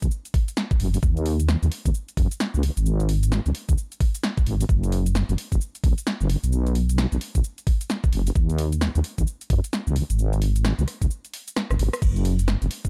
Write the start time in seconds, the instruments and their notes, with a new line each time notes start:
0.02 wobble bass B1, kick, closed hi-hat, shaker
0.11 shaker
0.25 closed hi-hat, shaker
0.34 kick, open hi-hat
0.48 closed hi-hat, shaker
0.57 snare, shaker
0.71 kick, shaker
0.80 wobble bass F#1, open hi-hat
0.94 open hi-hat, shaker
1.03 wobble bass D#2, kick, shaker
1.17 closed hi-hat, shaker
1.26 open hi-hat
1.40 closed hi-hat, shaker
1.49 cross-stick, snare, shaker
1.63 wobble bass D#2, closed hi-hat, shaker
1.72 open hi-hat
1.85 wobble bass D#2, kick, closed hi-hat, shaker
1.94 shaker
2.09 closed hi-hat, shaker
2.17 wobble bass F#2, kick, open hi-hat
2.31 closed hi-hat, shaker
2.40 snare, shaker
2.54 wobble bass C#2, shaker
2.63 open hi-hat
2.77 wobble bass G#1, closed hi-hat, shaker
2.86 shaker
3.00 closed hi-hat, shaker
3.09 open hi-hat
3.23 closed hi-hat, shaker
3.32 cross-stick, snare, shaker
3.46 wobble bass C#2, closed hi-hat, shaker
3.55 open hi-hat
3.69 wobble bass C#2, kick, closed hi-hat, shaker
3.78 shaker
3.92 closed hi-hat, shaker
4.00 kick, open hi-hat
4.15 closed hi-hat, shaker
4.24 snare, shaker
4.37 kick, closed hi-hat, shaker
4.46 wobble bass G#1, open hi-hat
4.61 open hi-hat, shaker
4.69 wobble bass F#1, kick, shaker
4.83 closed hi-hat, shaker
4.92 open hi-hat
5.06 closed hi-hat, shaker
5.15 cross-stick, snare, shaker
5.29 wobble bass F#1, closed hi-hat, shaker
5.38 open hi-hat
5.52 wobble bass F#1, kick, closed hi-hat, shaker
5.61 shaker
5.75 closed hi-hat, shaker
5.84 wobble bass B1, kick, open hi-hat
5.98 closed hi-hat, shaker
6.07 snare, shaker
6.21 wobble bass F#1, shaker
6.30 open hi-hat
6.44 wobble bass B1, closed hi-hat, shaker
6.52 shaker
6.67 closed hi-hat, shaker
6.75 open hi-hat
6.89 closed hi-hat, shaker
6.98 cross-stick, snare, shaker
7.12 wobble bass B1, closed hi-hat, shaker
7.21 open hi-hat
7.35 wobble bass B1, kick, closed hi-hat, shaker
7.44 shaker
7.58 closed hi-hat, shaker
7.67 kick, open hi-hat
7.81 closed hi-hat, shaker
7.90 snare, shaker
8.04 kick, shaker
8.13 wobble bass F#1, open hi-hat
8.27 open hi-hat, shaker
8.36 wobble bass D#2, kick, shaker
8.50 closed hi-hat, shaker
8.58 open hi-hat
8.72 closed hi-hat, shaker
8.81 cross-stick, snare, shaker
8.95 wobble bass D#2, closed hi-hat, shaker
9.04 open hi-hat
9.18 wobble bass D#2, kick, closed hi-hat, shaker
9.27 shaker
9.41 closed hi-hat, shaker
9.50 wobble bass F#2, kick, open hi-hat
9.64 closed hi-hat, shaker
9.73 snare, shaker
9.87 wobble bass C#2, shaker
9.96 open hi-hat
10.10 wobble bass G#1, closed hi-hat, shaker
10.19 shaker
10.33 closed hi-hat, shaker
10.42 open hi-hat
10.56 closed hi-hat, shaker
10.65 cross-stick, snare, shaker
10.79 wobble bass C#2, closed hi-hat, shaker
10.88 cross-stick, open hi-hat
11.02 wobble bass C#2, kick, closed hi-hat, shaker
11.11 shaker
11.25 closed hi-hat, shaker
11.34 open hi-hat
11.48 closed hi-hat, shaker
11.56 cross-stick, snare, shaker
11.70 wobble bass G#1, cross-stick, shaker
11.79 wobble bass G#1, open hi-hat
11.93 cross-stick, open hi-hat, shaker
12.02 wobble bass F#1, kick, crash, shaker
12.16 closed hi-hat, shaker
12.25 open hi-hat
12.39 closed hi-hat, shaker
12.48 cross-stick, snare, shaker
12.62 wobble bass F#1, closed hi-hat, shaker
12.71 open hi-hat
12.85 wobble bass F#1, kick, closed hi-hat, shaker